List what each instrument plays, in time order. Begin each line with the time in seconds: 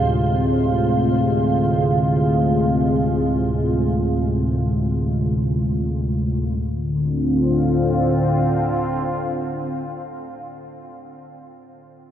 Already playing: synth drone D2 A2, analog synth pad C3 G#3 F4, synth texture C5
6.60 synth drone D2 A2, analog synth pad D3
6.76 analog synth pad C4
6.90 analog synth pad F4